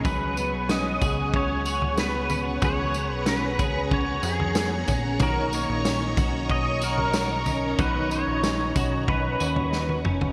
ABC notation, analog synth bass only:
X:1
M:4/4
L:1/16
Q:1/4=93
K:B
V:1 name="Analog synth bass" clef=bass
C,,3 B,,,3 C,,2 C,,8 | C,,3 B,,,3 C,,4 ^E,,4 A,,,2 | B,,,3 A,,,3 B,,,2 B,,,8 | B,,,3 A,,,3 B,,,4 D,,4 ^E,,,2 |]